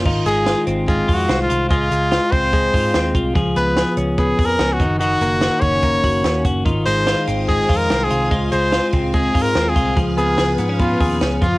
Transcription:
0.05 picked electric bass G#1, clean electric guitar D#3 F4, kick, crash
0.26 picked electric bass G#1, clean electric guitar G#3, trumpet G#4, hi-hat pedal, open hi-hat
0.46 clean electric guitar F4, snare, hi-hat pedal, open hi-hat
0.67 picked electric bass G#1, clean electric guitar C4, hi-hat pedal, open hi-hat
0.88 clean electric guitar G#3, trumpet F4, kick, hi-hat pedal, open hi-hat
1.08 picked electric bass F2, clean electric guitar F4, kick, hi-hat pedal, open hi-hat
1.14 trumpet F#4
1.29 picked electric bass C2, clean electric guitar C4, snare, hi-hat pedal, open hi-hat
1.42 trumpet F4
1.49 picked electric bass C2, clean electric guitar F4, hi-hat pedal, open hi-hat
1.70 picked electric bass C#2, clean electric guitar G#3 F4, trumpet F4, kick, hi-hat pedal, open hi-hat
1.91 picked electric bass C#2, clean electric guitar G#3, hi-hat pedal, open hi-hat
2.11 clean electric guitar F4, snare, hi-hat pedal, open hi-hat
2.32 picked electric bass C#2, clean electric guitar C4, trumpet C5, kick, hi-hat pedal, open hi-hat
2.53 clean electric guitar G#3, kick, hi-hat pedal, open hi-hat
2.74 picked electric bass G#2, clean electric guitar F4, kick, hi-hat pedal, open hi-hat
2.94 picked electric bass D#2, clean electric guitar C4, snare, hi-hat pedal, open hi-hat
3.15 picked electric bass C2, clean electric guitar F4, kick, hi-hat pedal, open hi-hat
3.35 picked electric bass C#2, clean electric guitar F3 G#4, kick, hi-hat pedal, open hi-hat
3.56 picked electric bass C#2, clean electric guitar B3, trumpet B4, hi-hat pedal, open hi-hat
3.77 clean electric guitar G#4, snare, hi-hat pedal, open hi-hat
3.97 picked electric bass C#2, clean electric guitar C#4, hi-hat pedal, open hi-hat
4.18 clean electric guitar B3, trumpet G#4, kick, hi-hat pedal, open hi-hat
4.39 picked electric bass F2, clean electric guitar G#4, kick, hi-hat pedal, open hi-hat
4.46 trumpet A#4
4.59 picked electric bass C#2, clean electric guitar C#4, snare, hi-hat pedal, open hi-hat
4.73 trumpet F#4
4.80 picked electric bass F#1, clean electric guitar D#3, kick, hi-hat pedal, open hi-hat
4.99 clean electric guitar D#3 F#4, trumpet F#4, hi-hat pedal, open hi-hat
5.21 picked electric bass F#1, clean electric guitar A#3, hi-hat pedal, open hi-hat
5.41 clean electric guitar F#4, snare, hi-hat pedal, open hi-hat
5.61 picked electric bass F#1, clean electric guitar C#4, trumpet C#5, kick, hi-hat pedal, open hi-hat
5.82 clean electric guitar A#3, kick, hi-hat pedal, open hi-hat
6.03 picked electric bass F#1, clean electric guitar F#4, kick, hi-hat pedal, open hi-hat
6.24 picked electric bass D#2, clean electric guitar C#4, snare, hi-hat pedal, open hi-hat
6.45 picked electric bass F#1, clean electric guitar F#4, kick, hi-hat pedal, open hi-hat
6.65 picked electric bass G#1, clean electric guitar D#3 F4, string machine C5 F5 G#5 D#6, kick, hi-hat pedal, open hi-hat
6.86 picked electric bass G#1, clean electric guitar G#3, trumpet C5, hi-hat pedal, open hi-hat
7.07 clean electric guitar F4, snare, hi-hat pedal, open hi-hat
7.27 picked electric bass G#1, clean electric guitar C4, hi-hat pedal, open hi-hat
7.48 clean electric guitar G#3, trumpet G#4, kick, hi-hat pedal, open hi-hat
7.69 picked electric bass F2, clean electric guitar F4, kick, hi-hat pedal, open hi-hat
7.77 trumpet A#4
7.90 picked electric bass C2, clean electric guitar C4, snare, hi-hat pedal, open hi-hat
8.04 trumpet G#4
8.10 picked electric bass C2, clean electric guitar F4, hi-hat pedal, open hi-hat
8.31 picked electric bass C#2, clean electric guitar G#3 F4, string machine C4 F5, kick, hi-hat pedal, open hi-hat
8.52 picked electric bass C#2, clean electric guitar G#3, trumpet C5, hi-hat pedal, open hi-hat
8.72 clean electric guitar F4, snare, hi-hat pedal, open hi-hat
8.92 picked electric bass C#2, clean electric guitar C4, kick, hi-hat pedal, open hi-hat
9.13 clean electric guitar G#3, trumpet G#4, kick, hi-hat pedal, open hi-hat
9.34 picked electric bass G#2, clean electric guitar F4, kick, hi-hat pedal, open hi-hat
9.42 trumpet A#4
9.55 picked electric bass D#2, clean electric guitar C4, snare, hi-hat pedal, open hi-hat
9.69 trumpet G#4
9.76 picked electric bass C2, clean electric guitar F4, kick, hi-hat pedal, open hi-hat
9.96 picked electric bass C#2, clean electric guitar F3 G#4, string machine B4 G#5, kick, hi-hat pedal, open hi-hat
10.17 picked electric bass C#2, clean electric guitar B3, trumpet G#4, hi-hat pedal, open hi-hat
10.38 picked electric bass C#2, clean electric guitar G#4, snare, hi-hat pedal, open hi-hat
10.58 picked electric bass G#2, clean electric guitar B3, hi-hat pedal, open hi-hat
10.69 clean electric guitar C#4
10.79 clean electric guitar B3, trumpet F4, kick, hi-hat pedal, open hi-hat
11.00 picked electric bass D#2, clean electric guitar G#4, kick, hi-hat pedal, open hi-hat
11.21 picked electric bass C#2, clean electric guitar C#4, snare, hi-hat pedal, open hi-hat
11.41 picked electric bass F#1, clean electric guitar F3, trumpet F4, string machine A#4 F#5 C#6, kick, hi-hat pedal, open hi-hat

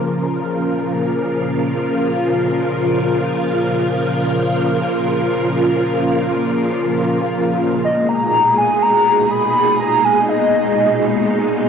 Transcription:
0.04 string machine A#2 C#3 F3 F4 A#4
7.85 string machine B2 G#3 D#4 G#4, soft synth lead D#5
8.09 soft synth lead A#5
8.58 soft synth lead G#5
8.82 soft synth lead A#5
9.31 soft synth lead B5
9.80 soft synth lead A#5
10.04 soft synth lead G#5
10.29 soft synth lead D#5

